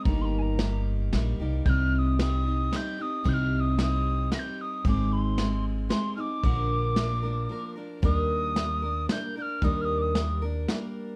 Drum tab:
RD |x-x-x-|x-x-x-|x-x-x-|x-x-x-|
HH |------|------|------|------|
SD |--o-o-|--o-o-|--o-o-|--o-o-|
BD |o-----|o-----|o-----|o-----|

RD |x-x---|------|------|
HH |------|x-x-x-|x-x-x-|
SD |--o---|--o-o-|--o-o-|
BD |o-----|o-----|o-----|